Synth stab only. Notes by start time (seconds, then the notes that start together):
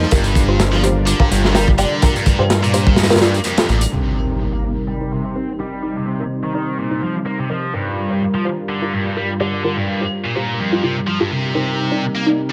0.12 F4 G4 A#4
0.49 F4 G4 C5
0.83 F4 G4 C5
1.20 F4 G4 A#4
1.55 F4 G4 A#4
1.78 F4 G4 D5
2.02 F4 G4 A#4
2.39 F4 G4 C5
2.74 F4 G4 C5
3.10 F4 G4 A#4
3.21 F4 G4 D5
3.58 F4 G4 A4
3.93 D#4 A#4 C5
4.29 D#4 A#4 D5
4.64 D#4 A#4 D5
5.01 D#4 A#4 C5
5.35 D#4 A#4 C5
5.59 D#4 A#4 D#5
5.83 D#4 A#4 C5
6.20 D#4 A#4 D5
6.54 D#4 A#4 D5
6.91 D#4 A#4 C5
7.26 D#4 A#4 C5
7.49 D#4 A#4 D#5
7.74 F4 G4 A#4
8.10 F4 G4 C5
8.45 F4 G4 C5
8.82 F4 G4 A#4
9.17 F4 G4 A#4
9.40 F4 G4 D5
9.64 F4 G4 A#4
10.01 F4 G4 C5
10.36 F4 G4 C5
10.72 F4 G4 A#4
10.83 F4 G4 D5
11.20 F4 G4 A4
11.55 D#4 A#4 C5
11.91 D#4 A#4 D5
12.26 D#4 A#4 D5